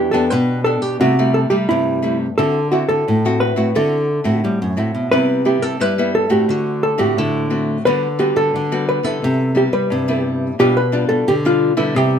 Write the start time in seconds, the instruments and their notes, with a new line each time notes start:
Already playing: nylon-string guitar E3 D4 G4, hollow-body jazz guitar G4
0.11 nylon-string guitar E2 B3 D4 G4, hollow-body jazz guitar A4
0.30 nylon-string guitar B2, hollow-body jazz guitar B4
0.64 nylon-string guitar B3 D4 G4, hollow-body jazz guitar A4
0.82 nylon-string guitar B2, hollow-body jazz guitar G4
1.01 nylon-string guitar C3 G3 A3 E4, hollow-body jazz guitar F#4
1.19 nylon-string guitar G3 A3 E4
1.34 hollow-body jazz guitar A4
1.50 nylon-string guitar G3 A3 E4, hollow-body jazz guitar G4
1.69 nylon-string guitar G2 C3, hollow-body jazz guitar E4
2.02 nylon-string guitar G3 A3 E4
2.38 nylon-string guitar D3 C4 E4 F#4, hollow-body jazz guitar A4
2.72 nylon-string guitar C4 E4 F#4, hollow-body jazz guitar F#4
2.89 nylon-string guitar D3, hollow-body jazz guitar A4
3.08 nylon-string guitar A2
3.25 nylon-string guitar C4 E4 F#4
3.40 hollow-body jazz guitar B4
3.56 nylon-string guitar A2 C4 E4 F#4
3.75 nylon-string guitar D3 C4 E4 F#4, hollow-body jazz guitar A4
4.24 nylon-string guitar A2 C4 E4 F#4
4.44 nylon-string guitar A2 G3
4.62 nylon-string guitar F#2
4.77 nylon-string guitar A2 C4 E4 F#4
4.95 nylon-string guitar B2
5.12 nylon-string guitar C3 G3 B3 E4, hollow-body jazz guitar B4
5.45 nylon-string guitar G3 B3 E4, hollow-body jazz guitar G4
5.62 nylon-string guitar C3, hollow-body jazz guitar A4
5.80 nylon-string guitar G2 G3 B3 E4, hollow-body jazz guitar B4
5.98 nylon-string guitar G3 B3 E4
6.15 hollow-body jazz guitar A4
6.29 nylon-string guitar A2 A3 C4 F#4, hollow-body jazz guitar G4
6.48 nylon-string guitar D3, hollow-body jazz guitar F#4
6.83 hollow-body jazz guitar A4
6.98 nylon-string guitar A2 A3 C4 F#4, hollow-body jazz guitar G4
7.17 nylon-string guitar A2 D3, hollow-body jazz guitar E4
7.50 nylon-string guitar A3 C4 F#4
7.85 nylon-string guitar D3 G3 B3 F#4, hollow-body jazz guitar B4
8.19 nylon-string guitar G3 B3 F#4, hollow-body jazz guitar G4
8.36 nylon-string guitar D3, hollow-body jazz guitar A4
8.54 nylon-string guitar D3
8.72 nylon-string guitar G3 B3 F#4
8.89 hollow-body jazz guitar B4
9.03 nylon-string guitar D3 G3 B3 E4, hollow-body jazz guitar A4
9.22 nylon-string guitar C3
9.55 nylon-string guitar G3 B3 E4, hollow-body jazz guitar G4
9.73 nylon-string guitar G3, hollow-body jazz guitar B4
9.90 nylon-string guitar G2 C3
10.08 nylon-string guitar G3 B3 E4
10.59 nylon-string guitar B2 G3 D4 F4, hollow-body jazz guitar G4
10.77 hollow-body jazz guitar B4
10.92 nylon-string guitar G3 D4 F4
11.09 nylon-string guitar B2, hollow-body jazz guitar A4
11.27 nylon-string guitar B2 D3, hollow-body jazz guitar G4
11.45 nylon-string guitar G3 D4 F4, hollow-body jazz guitar F4
11.77 nylon-string guitar D3 G3 B3 E4, hollow-body jazz guitar E4
11.95 nylon-string guitar C3, hollow-body jazz guitar G4